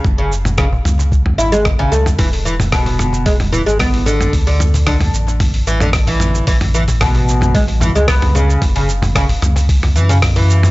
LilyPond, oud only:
\new Staff \with { instrumentName = "Oud" } { \clef bass \time 4/4 \key fis \minor \tempo 4 = 112 r16 cis16 r8 cis16 r4 r16 e'16 gis16 r16 cis16 a16 r16 | e16 r16 e16 r16 b,4 gis16 r16 e16 gis16 b8 d8 | r16 d16 r8 d16 r4 r16 e16 d16 r16 e8. | e16 r16 e16 r16 b,4 gis16 r16 e16 gis16 b8 cis8 |
r16 cis16 r8 cis16 r4 r16 e16 cis16 r16 e8. | }